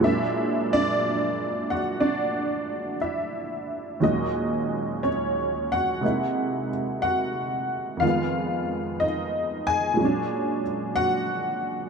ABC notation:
X:1
M:4/4
L:1/8
Q:"Swing" 1/4=60
K:Bbphr
V:1 name="Honky-tonk piano"
[_F_f] [=D=d]2 [^F^f] [Dd]2 [_F_f]2 | [Ee]2 [Dd] [Gg]2 z [Gg]2 | [Ff]2 [Ee] [Aa]2 z [^F^f]2 |]
V:2 name="Honky-tonk piano" clef=bass
[B,,^F,A,B,=D]8 | [E,,B,,G,A,DG]4 [=C,^G,B,^D=E]4 | [F,,E,A,C]4 [B,,^F,A,^C=D]4 |]